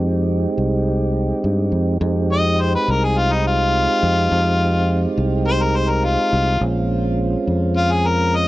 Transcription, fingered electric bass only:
0, 0, Header, 1, 2, 480
1, 0, Start_track
1, 0, Key_signature, -4, "minor"
1, 0, Tempo, 574878
1, 1681, Time_signature, 4, 2, 24, 8
1, 7080, End_track
2, 0, Start_track
2, 0, Title_t, "Fingered electric bass"
2, 0, Program_c, 0, 33
2, 0, Note_on_c, 0, 41, 98
2, 377, Note_off_c, 0, 41, 0
2, 481, Note_on_c, 0, 36, 74
2, 1097, Note_off_c, 0, 36, 0
2, 1202, Note_on_c, 0, 43, 74
2, 1417, Note_off_c, 0, 43, 0
2, 1435, Note_on_c, 0, 41, 67
2, 1654, Note_off_c, 0, 41, 0
2, 1677, Note_on_c, 0, 41, 107
2, 2295, Note_off_c, 0, 41, 0
2, 2405, Note_on_c, 0, 36, 80
2, 3224, Note_off_c, 0, 36, 0
2, 3363, Note_on_c, 0, 41, 89
2, 3567, Note_off_c, 0, 41, 0
2, 3603, Note_on_c, 0, 41, 106
2, 4218, Note_off_c, 0, 41, 0
2, 4321, Note_on_c, 0, 36, 85
2, 5142, Note_off_c, 0, 36, 0
2, 5282, Note_on_c, 0, 36, 85
2, 5487, Note_off_c, 0, 36, 0
2, 5520, Note_on_c, 0, 34, 93
2, 6136, Note_off_c, 0, 34, 0
2, 6241, Note_on_c, 0, 41, 75
2, 7062, Note_off_c, 0, 41, 0
2, 7080, End_track
0, 0, End_of_file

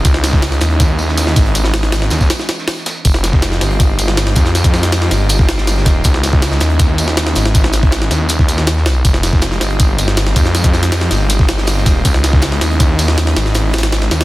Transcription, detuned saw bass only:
0, 0, Header, 1, 2, 480
1, 0, Start_track
1, 0, Tempo, 375000
1, 63, Time_signature, 4, 2, 24, 8
1, 18230, End_track
2, 0, Start_track
2, 0, Title_t, "Detuned saw bass"
2, 0, Program_c, 0, 39
2, 63, Note_on_c, 0, 37, 103
2, 764, Note_off_c, 0, 37, 0
2, 783, Note_on_c, 0, 39, 97
2, 1724, Note_off_c, 0, 39, 0
2, 1745, Note_on_c, 0, 32, 95
2, 2685, Note_off_c, 0, 32, 0
2, 2705, Note_on_c, 0, 39, 95
2, 2944, Note_off_c, 0, 39, 0
2, 3903, Note_on_c, 0, 29, 102
2, 4604, Note_off_c, 0, 29, 0
2, 4625, Note_on_c, 0, 31, 98
2, 5565, Note_off_c, 0, 31, 0
2, 5583, Note_on_c, 0, 41, 99
2, 6524, Note_off_c, 0, 41, 0
2, 6545, Note_on_c, 0, 31, 96
2, 7500, Note_on_c, 0, 27, 105
2, 7520, Note_off_c, 0, 31, 0
2, 7718, Note_off_c, 0, 27, 0
2, 7742, Note_on_c, 0, 37, 105
2, 8443, Note_off_c, 0, 37, 0
2, 8462, Note_on_c, 0, 39, 99
2, 9403, Note_off_c, 0, 39, 0
2, 9424, Note_on_c, 0, 32, 98
2, 10364, Note_off_c, 0, 32, 0
2, 10380, Note_on_c, 0, 39, 100
2, 11338, Note_on_c, 0, 35, 108
2, 11357, Note_off_c, 0, 39, 0
2, 11557, Note_off_c, 0, 35, 0
2, 11580, Note_on_c, 0, 29, 104
2, 12282, Note_off_c, 0, 29, 0
2, 12303, Note_on_c, 0, 31, 93
2, 13244, Note_off_c, 0, 31, 0
2, 13262, Note_on_c, 0, 41, 96
2, 14203, Note_off_c, 0, 41, 0
2, 14225, Note_on_c, 0, 31, 98
2, 15184, Note_on_c, 0, 27, 101
2, 15203, Note_off_c, 0, 31, 0
2, 15399, Note_off_c, 0, 27, 0
2, 15422, Note_on_c, 0, 37, 107
2, 16123, Note_off_c, 0, 37, 0
2, 16146, Note_on_c, 0, 39, 97
2, 17085, Note_off_c, 0, 39, 0
2, 17110, Note_on_c, 0, 32, 93
2, 18047, Note_off_c, 0, 32, 0
2, 18066, Note_on_c, 0, 39, 96
2, 18230, Note_off_c, 0, 39, 0
2, 18230, End_track
0, 0, End_of_file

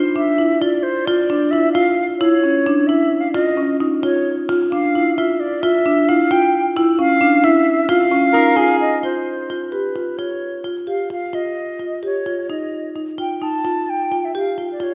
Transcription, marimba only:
0, 0, Header, 1, 2, 480
1, 0, Start_track
1, 0, Tempo, 454890
1, 1136, Time_signature, 5, 3, 24, 8
1, 8564, Tempo, 461894
1, 15656, End_track
2, 0, Start_track
2, 0, Title_t, "Marimba"
2, 0, Program_c, 0, 12
2, 166, Note_on_c, 0, 62, 62
2, 310, Note_off_c, 0, 62, 0
2, 404, Note_on_c, 0, 64, 69
2, 550, Note_off_c, 0, 64, 0
2, 650, Note_on_c, 0, 65, 75
2, 938, Note_off_c, 0, 65, 0
2, 1134, Note_on_c, 0, 65, 84
2, 1277, Note_off_c, 0, 65, 0
2, 1372, Note_on_c, 0, 62, 64
2, 1516, Note_off_c, 0, 62, 0
2, 1613, Note_on_c, 0, 64, 66
2, 1756, Note_off_c, 0, 64, 0
2, 1848, Note_on_c, 0, 65, 84
2, 2133, Note_off_c, 0, 65, 0
2, 2330, Note_on_c, 0, 64, 92
2, 2473, Note_off_c, 0, 64, 0
2, 2570, Note_on_c, 0, 61, 59
2, 2712, Note_off_c, 0, 61, 0
2, 2812, Note_on_c, 0, 62, 77
2, 2954, Note_off_c, 0, 62, 0
2, 3049, Note_on_c, 0, 64, 78
2, 3334, Note_off_c, 0, 64, 0
2, 3530, Note_on_c, 0, 65, 83
2, 3672, Note_off_c, 0, 65, 0
2, 3771, Note_on_c, 0, 61, 60
2, 3914, Note_off_c, 0, 61, 0
2, 4014, Note_on_c, 0, 63, 69
2, 4157, Note_off_c, 0, 63, 0
2, 4253, Note_on_c, 0, 65, 78
2, 4540, Note_off_c, 0, 65, 0
2, 4738, Note_on_c, 0, 65, 78
2, 4880, Note_off_c, 0, 65, 0
2, 4983, Note_on_c, 0, 62, 62
2, 5124, Note_off_c, 0, 62, 0
2, 5227, Note_on_c, 0, 64, 69
2, 5367, Note_off_c, 0, 64, 0
2, 5466, Note_on_c, 0, 65, 73
2, 5748, Note_off_c, 0, 65, 0
2, 5944, Note_on_c, 0, 65, 87
2, 6084, Note_off_c, 0, 65, 0
2, 6182, Note_on_c, 0, 62, 69
2, 6322, Note_off_c, 0, 62, 0
2, 6423, Note_on_c, 0, 64, 73
2, 6563, Note_off_c, 0, 64, 0
2, 6657, Note_on_c, 0, 65, 81
2, 6939, Note_off_c, 0, 65, 0
2, 7141, Note_on_c, 0, 64, 89
2, 7279, Note_off_c, 0, 64, 0
2, 7374, Note_on_c, 0, 61, 69
2, 7513, Note_off_c, 0, 61, 0
2, 7607, Note_on_c, 0, 62, 72
2, 7748, Note_off_c, 0, 62, 0
2, 7848, Note_on_c, 0, 64, 86
2, 8131, Note_off_c, 0, 64, 0
2, 8325, Note_on_c, 0, 65, 95
2, 8467, Note_off_c, 0, 65, 0
2, 8562, Note_on_c, 0, 61, 67
2, 8704, Note_off_c, 0, 61, 0
2, 8801, Note_on_c, 0, 63, 75
2, 8943, Note_off_c, 0, 63, 0
2, 9031, Note_on_c, 0, 65, 76
2, 9321, Note_off_c, 0, 65, 0
2, 9516, Note_on_c, 0, 65, 60
2, 9805, Note_off_c, 0, 65, 0
2, 10002, Note_on_c, 0, 65, 48
2, 10146, Note_off_c, 0, 65, 0
2, 10233, Note_on_c, 0, 67, 54
2, 10380, Note_off_c, 0, 67, 0
2, 10476, Note_on_c, 0, 65, 53
2, 10620, Note_off_c, 0, 65, 0
2, 10717, Note_on_c, 0, 65, 55
2, 11002, Note_off_c, 0, 65, 0
2, 11190, Note_on_c, 0, 65, 52
2, 11334, Note_off_c, 0, 65, 0
2, 11428, Note_on_c, 0, 67, 56
2, 11572, Note_off_c, 0, 67, 0
2, 11669, Note_on_c, 0, 65, 51
2, 11812, Note_off_c, 0, 65, 0
2, 11906, Note_on_c, 0, 65, 62
2, 12192, Note_off_c, 0, 65, 0
2, 12387, Note_on_c, 0, 65, 48
2, 12531, Note_off_c, 0, 65, 0
2, 12629, Note_on_c, 0, 67, 60
2, 12773, Note_off_c, 0, 67, 0
2, 12874, Note_on_c, 0, 65, 55
2, 13016, Note_off_c, 0, 65, 0
2, 13116, Note_on_c, 0, 63, 60
2, 13401, Note_off_c, 0, 63, 0
2, 13594, Note_on_c, 0, 63, 52
2, 13738, Note_off_c, 0, 63, 0
2, 13830, Note_on_c, 0, 65, 52
2, 13976, Note_off_c, 0, 65, 0
2, 14073, Note_on_c, 0, 63, 53
2, 14219, Note_off_c, 0, 63, 0
2, 14313, Note_on_c, 0, 65, 62
2, 14602, Note_off_c, 0, 65, 0
2, 14799, Note_on_c, 0, 65, 51
2, 14943, Note_off_c, 0, 65, 0
2, 15041, Note_on_c, 0, 67, 59
2, 15184, Note_off_c, 0, 67, 0
2, 15279, Note_on_c, 0, 65, 53
2, 15423, Note_off_c, 0, 65, 0
2, 15513, Note_on_c, 0, 65, 62
2, 15656, Note_off_c, 0, 65, 0
2, 15656, End_track
0, 0, End_of_file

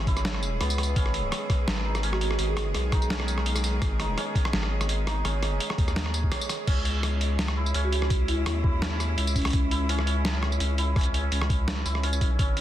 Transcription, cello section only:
0, 0, Header, 1, 2, 480
1, 0, Start_track
1, 0, Key_signature, 4, "minor"
1, 0, Tempo, 357143
1, 1290, Time_signature, 4, 2, 24, 8
1, 16946, End_track
2, 0, Start_track
2, 0, Title_t, "Cello section"
2, 0, Program_c, 0, 48
2, 0, Note_on_c, 0, 52, 73
2, 0, Note_on_c, 0, 56, 79
2, 0, Note_on_c, 0, 61, 96
2, 0, Note_on_c, 0, 68, 77
2, 1291, Note_off_c, 0, 52, 0
2, 1301, Note_on_c, 0, 51, 84
2, 1658, Note_on_c, 0, 59, 73
2, 2878, Note_off_c, 0, 61, 0
2, 8971, Note_on_c, 0, 64, 92
2, 8976, Note_off_c, 0, 51, 0
2, 9494, Note_on_c, 0, 61, 80
2, 10561, Note_off_c, 0, 59, 0
2, 16651, Note_off_c, 0, 64, 0
2, 16652, Note_off_c, 0, 56, 0
2, 16653, Note_off_c, 0, 68, 0
2, 16653, Note_on_c, 0, 51, 86
2, 16895, Note_on_c, 0, 56, 77
2, 16946, Note_off_c, 0, 51, 0
2, 16946, Note_off_c, 0, 56, 0
2, 16946, Note_off_c, 0, 61, 0
2, 16946, End_track
0, 0, End_of_file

